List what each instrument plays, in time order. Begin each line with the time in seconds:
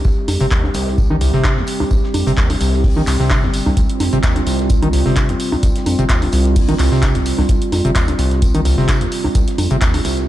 Already playing: analog synth pad G3 C4 G4
0.05 acid bass C2, analog synth bass C2, kick, tambourine
0.28 analog synth bass F2, snare, open hi-hat, tambourine, high conga
0.40 analog synth bass G1, acid bass C3, closed hi-hat
0.51 acid bass D#2, kick, snare, clap, tambourine
0.64 acid bass C2, snare, high conga
0.74 acid bass C2, analog synth bass C2, open hi-hat, tambourine
0.87 snare
0.98 acid bass C3, kick, tambourine
1.10 acid bass D#3, high conga
1.21 acid bass C2, open hi-hat, tambourine
1.33 analog synth bass G1, acid bass C3, snare
1.44 kick, snare, clap, tambourine, high conga
1.57 acid bass C2, snare
1.67 open hi-hat, tambourine
1.80 acid bass C2, high conga
1.91 acid bass C2, analog synth bass C2, kick, tambourine
2.04 snare
2.14 analog synth bass F2, open hi-hat, tambourine, high conga
2.27 analog synth bass G1, acid bass C3, closed hi-hat
2.37 acid bass D#2, kick, snare, clap, tambourine
2.50 acid bass C2, snare, open hi-hat, high conga
2.61 acid bass C2, analog synth bass C2, open hi-hat, tambourine
2.74 snare
2.84 acid bass C3, kick, open hi-hat
2.96 acid bass D#3, high conga
3.07 acid bass C2, analog synth bass C2, clap, open hi-hat, tambourine
3.20 acid bass C3, snare
3.30 analog synth bass G1, kick, snare, clap, tambourine, high conga
3.43 acid bass C2, snare
3.54 open hi-hat, tambourine
3.66 acid bass C2, analog synth bass C2, snare, high conga
3.77 acid bass C2, analog synth bass C2, analog synth pad F4, kick, closed hi-hat, tambourine
3.90 closed hi-hat
4.00 analog synth bass F2, snare, open hi-hat, tambourine, high conga
4.13 analog synth bass G1, acid bass C3, closed hi-hat
4.23 acid bass D#2, kick, snare, clap, closed hi-hat, tambourine
4.36 acid bass C2, snare, closed hi-hat, high conga
4.46 acid bass C2, analog synth bass C2, open hi-hat, tambourine
4.59 snare, closed hi-hat
4.69 acid bass C3, kick, closed hi-hat, tambourine
4.82 acid bass D#3, closed hi-hat, high conga
4.93 acid bass C2, open hi-hat, tambourine
5.06 analog synth bass G1, acid bass C3, snare
5.16 kick, snare, clap, closed hi-hat, tambourine, high conga
5.29 acid bass C2, snare, closed hi-hat
5.40 open hi-hat, tambourine
5.52 acid bass C2, high conga
5.63 acid bass C2, analog synth bass C2, kick, closed hi-hat, tambourine
5.76 snare, closed hi-hat
5.86 analog synth bass F2, open hi-hat, tambourine, high conga
5.99 analog synth bass G1, acid bass C3, closed hi-hat
6.09 acid bass D#2, kick, snare, clap, closed hi-hat, tambourine
6.22 acid bass C2, snare, open hi-hat, high conga
6.32 acid bass C2, analog synth bass C2, open hi-hat, tambourine
6.45 snare, closed hi-hat
6.56 acid bass C3, kick, closed hi-hat, open hi-hat
6.69 acid bass D#3, closed hi-hat, high conga
6.79 acid bass C2, analog synth bass C2, clap, open hi-hat, tambourine
6.91 acid bass C3, snare
7.02 kick, snare, clap, closed hi-hat, tambourine, high conga
7.14 acid bass C2, snare, closed hi-hat
7.26 open hi-hat, tambourine
7.38 analog synth bass C2, acid bass C2, snare, high conga
7.49 analog synth bass C2, acid bass C2, kick, closed hi-hat, tambourine
7.62 closed hi-hat
7.72 analog synth bass F2, snare, open hi-hat, tambourine, high conga
7.85 analog synth bass G1, acid bass C3, closed hi-hat
7.95 acid bass D#2, kick, snare, clap, closed hi-hat, tambourine
8.08 acid bass C2, snare, closed hi-hat, high conga
8.19 acid bass C2, analog synth bass C2, open hi-hat, tambourine
8.31 snare, closed hi-hat
8.42 acid bass C3, kick, closed hi-hat, tambourine
8.55 acid bass D#3, closed hi-hat, high conga
8.65 acid bass C2, open hi-hat, tambourine
8.78 analog synth bass G1, acid bass C3, snare
8.88 kick, snare, clap, closed hi-hat, tambourine, high conga
9.01 acid bass C2, snare, closed hi-hat
9.12 open hi-hat, tambourine
9.24 acid bass C2, high conga
9.35 acid bass C2, analog synth bass C2, kick, closed hi-hat, tambourine
9.48 snare, closed hi-hat
9.58 analog synth bass F2, open hi-hat, tambourine, high conga
9.70 analog synth bass G1, acid bass C3, closed hi-hat
9.81 acid bass D#2, kick, snare, clap, closed hi-hat, tambourine
9.93 acid bass C2, snare, open hi-hat, high conga
10.05 acid bass C2, analog synth bass C2, open hi-hat, tambourine
10.17 snare, closed hi-hat